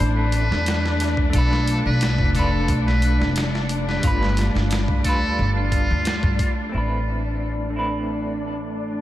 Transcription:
Already playing: clean electric guitar A3 C4 E4 A4, synth drone A3, string section D4, muted trumpet C5
0.00 upright bass A1
0.17 muted trumpet B4
0.32 closed hi-hat
0.51 upright bass E2, snare
0.66 snare, closed hi-hat
0.85 snare
1.00 snare, closed hi-hat
1.17 kick
1.30 clean electric guitar A3 D4, kick, closed hi-hat
1.34 upright bass B1, clean electric guitar F4, muted trumpet A4
1.38 clean electric guitar B4
1.53 snare
1.68 closed hi-hat
1.86 upright bass B1, muted trumpet B4
2.01 snare, closed hi-hat
2.18 upright bass F1, kick
2.30 clean electric guitar A3 D4
2.35 clean electric guitar F4, muted trumpet A4, kick, closed hi-hat
2.39 clean electric guitar B4
2.68 upright bass B1, kick, closed hi-hat
2.87 muted trumpet B4, snare
3.02 closed hi-hat
3.20 upright bass F1, snare
3.36 snare, closed hi-hat
3.55 snare
3.69 closed hi-hat
3.88 muted trumpet B4, snare
3.99 clean electric guitar G3 D4
4.03 upright bass G1, clean electric guitar F4, kick, closed hi-hat
4.07 clean electric guitar B4
4.23 snare
4.37 snare, closed hi-hat
4.55 upright bass G1, snare
4.71 snare, closed hi-hat
4.88 upright bass D2, kick
5.00 clean electric guitar G3 D4
5.04 clean electric guitar F4, muted trumpet A4, kick, closed hi-hat
5.09 clean electric guitar B4
5.39 upright bass G1
5.57 muted trumpet F4
5.72 kick, closed hi-hat
5.90 upright bass D2
6.05 snare, closed hi-hat
6.23 upright bass G2, kick
6.39 kick, closed hi-hat
6.69 clean electric guitar A3 C4, synth drone A3
6.74 upright bass A1, string section D4, clean electric guitar E4
6.78 clean electric guitar B4
7.70 clean electric guitar A3 C4
7.76 clean electric guitar E4 B4

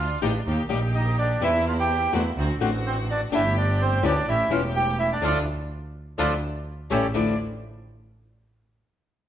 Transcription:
Already playing: double bass D2, string section A3 D4 F4, bandoneon F4 F5
0.22 double bass A1, nylon-string guitar D#3 G3 A#3 D#4 G4, string section A3 D4 F4
0.46 double bass D#2, string section A#3 D#4 G4
0.69 double bass A#1, nylon-string guitar D#3 G3 A#3 D#4 G4, string section A#3 D#4 G4
0.95 bandoneon D#4 D#5
1.18 bandoneon D4 D5
1.41 double bass E2, nylon-string guitar E3 G3 C4 E4, string section A#3 C4 E4, bandoneon E4 E5
1.68 bandoneon F4 F5
1.80 bandoneon G4 G5
2.12 double bass E2, nylon-string guitar D3 A3 C4 F#4, string section A#3 C4 E4
2.36 double bass D2, string section C4 D4 F#4
2.60 double bass A1, nylon-string guitar D3 A3 C4 F#4, string section C4 D4 F#4
2.86 bandoneon C4 C5
3.11 bandoneon D4 D5
3.32 double bass G1, nylon-string guitar D3 G3 D4 G4, string section A3 D4 G4, bandoneon E4 E5
3.58 bandoneon D4 D5
3.82 bandoneon C4 C5
4.02 double bass D2, nylon-string guitar E3 G3 C#4 E4, string section A3 D4 G4, bandoneon D4 D5
4.27 double bass A1, string section A3 C#4 G4, bandoneon E4 E5
4.50 double bass E1, nylon-string guitar E3 G3 C#4 E4, string section A3 C#4 G4, bandoneon F4 F5
4.76 bandoneon G4 G5
4.99 bandoneon E4 E5
5.12 bandoneon D4 D5
5.22 double bass D2, nylon-string guitar F3 A3 D4, string section D4 E4 F4, bandoneon F4 A4 D5
6.18 double bass D2, nylon-string guitar F3 A3 D4, string section D4 E4 F4, bandoneon F4 A4 D5
6.90 double bass A1, nylon-string guitar G3 A3 C#4, string section A3 C#4 E4, bandoneon G4 A4 C#5
7.14 double bass D2, nylon-string guitar D3 F3 A3 D4 E4, string section D4 E4 F4, bandoneon D5

